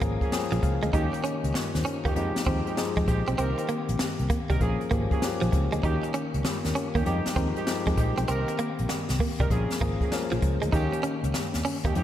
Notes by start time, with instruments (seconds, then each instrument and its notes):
Already playing: tine electric piano A#3 C#4 G#4
0.00 fingered electric bass G#1, tine electric piano F3 A#3 C#4 G#4 A#5, clean electric guitar A#3, kick, closed hi-hat
0.21 horn section A#3 C#4 G#4, tine electric piano G#5, kick, closed hi-hat
0.32 tine electric piano F3 A#3 C#4 G#4 G5, snare
0.52 fingered electric bass A#1, clean electric guitar F3, closed hi-hat
0.63 fingered electric bass C#2, tine electric piano F5, muted clean electric guitar stroke, kick, closed hi-hat
0.83 fingered electric bass D2, clean electric guitar G#3, closed hi-hat
0.93 fingered electric bass D#2, tine electric piano D#3 A#3 C#4 F#4, horn section C#4 D#4 G4, clean electric guitar D#4, kick, closed hi-hat
1.01 tine electric piano G4
1.13 muted clean electric guitar stroke, closed hi-hat
1.24 clean electric guitar C#4, closed hi-hat
1.44 fingered electric bass C#2, tine electric piano G4 D#5, closed hi-hat
1.54 tine electric piano F4 C#5, muted clean electric guitar stroke, snare
1.75 fingered electric bass D#2, tine electric piano D#4 C5, snare, closed hi-hat
1.85 clean electric guitar C#4, tine electric piano C#4 A#4, closed hi-hat
2.05 fingered electric bass D#2, clean electric guitar A#3, tine electric piano A#3 G4, horn section C#4 D#4 G4, kick, closed hi-hat
2.15 fingered electric bass F2, tine electric piano F3 G#3 D#4 G4, horn section G#3 D#4 G4, closed hi-hat
2.36 muted fingered electric bass stroke, snare, closed hi-hat
2.46 fingered electric bass D#2, tine electric piano F3 G#3 D#4 G4, clean electric guitar C4, kick, closed hi-hat
2.66 horn section G#3 D#4 G4, closed hi-hat
2.77 tine electric piano F3 G#3 D#4 G#4, snare
2.97 fingered electric bass F2, clean electric guitar G#3, kick, closed hi-hat
3.08 fingered electric bass A#1, horn section G#3 D#4 G4, muted clean electric guitar stroke, kick, closed hi-hat
3.28 fingered electric bass B1, clean electric guitar C4, closed hi-hat
3.38 fingered electric bass C2, tine electric piano D3 A#3 C4 G4, horn section C4 D#4 A#4, clean electric guitar C4, closed hi-hat
3.45 tine electric piano D#3
3.58 muted clean electric guitar stroke, closed hi-hat
3.69 clean electric guitar A#3, closed hi-hat
3.89 fingered electric bass A#1, closed hi-hat
3.99 muted clean electric guitar stroke, muted fingered electric bass stroke, snare
4.19 fingered electric bass C2, closed hi-hat
4.30 clean electric guitar A#3, kick, closed hi-hat
4.50 fingered electric bass C2, clean electric guitar G3, horn section C4 D#4 A#4, kick, closed hi-hat
4.61 fingered electric bass A#1, tine electric piano F3 A#3 C#4 G#4, horn section A#3 C#4 G#4, kick, closed hi-hat
4.81 muted fingered electric bass stroke, closed hi-hat
4.91 fingered electric bass G#1, tine electric piano F3 A#3 C#4 G4, clean electric guitar A#3, kick, closed hi-hat
5.11 horn section A#3 C#4 G#4, kick, closed hi-hat
5.22 tine electric piano F3 A#3 C#4 G4, snare
5.41 fingered electric bass A#1, clean electric guitar F3, closed hi-hat
5.52 fingered electric bass C#2, muted clean electric guitar stroke, kick, closed hi-hat
5.72 fingered electric bass D2, clean electric guitar G#3, closed hi-hat
5.83 fingered electric bass D#2, tine electric piano D#3 A#3 C#4 F#4, horn section C#4 D#4 G4, clean electric guitar D#4, kick, closed hi-hat
5.91 tine electric piano G4
6.03 muted clean electric guitar stroke, closed hi-hat
6.14 clean electric guitar C#4, closed hi-hat
6.34 fingered electric bass C#2, closed hi-hat
6.44 tine electric piano F4 C#5, muted clean electric guitar stroke, muted fingered electric bass stroke, snare
6.64 fingered electric bass D#2, tine electric piano C#4 A#4, snare, closed hi-hat
6.75 tine electric piano A#3 G4, clean electric guitar C#4, closed hi-hat
6.95 fingered electric bass D#2, tine electric piano G3 D#4, clean electric guitar A#3, horn section C#4 D#4 G4, kick, closed hi-hat
7.05 fingered electric bass F2, tine electric piano F3 G#3 D#4 G4, horn section G#3 D#4 G4, closed hi-hat
7.26 muted fingered electric bass stroke, snare, closed hi-hat
7.36 fingered electric bass D#2, tine electric piano F3 G#3 D#4 A#4, clean electric guitar C4, kick, closed hi-hat
7.56 horn section G#3 D#4 G4, closed hi-hat
7.67 tine electric piano F3 G#3 D#4 G4, snare
7.87 fingered electric bass F2, clean electric guitar G#3, kick, closed hi-hat
7.97 fingered electric bass A#1, horn section G#3 D#4 G4, muted clean electric guitar stroke, kick, closed hi-hat
8.17 fingered electric bass B1, clean electric guitar C4, closed hi-hat
8.28 fingered electric bass C2, tine electric piano D#3 A#3 C4 G4, horn section C4 D#4 A#4, clean electric guitar C4, closed hi-hat
8.48 muted clean electric guitar stroke, closed hi-hat
8.59 clean electric guitar A#3, closed hi-hat
8.79 fingered electric bass A#1, closed hi-hat
8.89 muted clean electric guitar stroke, snare
9.09 fingered electric bass C2, snare, closed hi-hat
9.20 clean electric guitar A#3, kick, open hi-hat
9.40 fingered electric bass C2, clean electric guitar G3, horn section C4 D#4 A#4, kick, closed hi-hat
9.50 fingered electric bass A#1, tine electric piano F3 A#3 C#4 G#4, horn section A#3 C#4 G#4, kick, closed hi-hat
9.70 muted fingered electric bass stroke, snare, closed hi-hat
9.81 fingered electric bass G#1, tine electric piano F3 A#3 C#4 G#4, clean electric guitar A#3, kick, closed hi-hat
10.00 horn section A#3 C#4 G#4, kick, closed hi-hat
10.12 tine electric piano F3 A#3 C#4 A#4, snare
10.32 fingered electric bass A#1, clean electric guitar F3, closed hi-hat
10.42 fingered electric bass C#2, muted clean electric guitar stroke, kick, closed hi-hat
10.62 fingered electric bass D2, clean electric guitar G#3, closed hi-hat
10.72 fingered electric bass D#2, tine electric piano D#3 A#3 C#4 G4, horn section C#4 D#4 G4, clean electric guitar D#4, kick, closed hi-hat
10.93 muted clean electric guitar stroke, closed hi-hat
11.03 clean electric guitar C#4, closed hi-hat
11.23 fingered electric bass C#2, closed hi-hat
11.34 muted clean electric guitar stroke, snare
11.54 fingered electric bass D#2, snare, closed hi-hat
11.65 clean electric guitar C#4, open hi-hat
11.84 fingered electric bass D#2, clean electric guitar A#3, horn section C#4 D#4 G4, kick, closed hi-hat
11.95 fingered electric bass F2, tine electric piano F3 G#3 D#4 G4, horn section G#3 D#4 G4, closed hi-hat